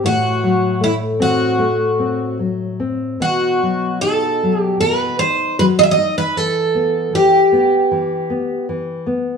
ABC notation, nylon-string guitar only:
X:1
M:4/4
L:1/8
Q:1/4=77
K:Em
V:1 name="Nylon-string guitar" clef=bass
A,, F, A, C A, C F, C | B,, F, ^D F, B,, D F, D | E, B, E, B, E, B, E, B, |]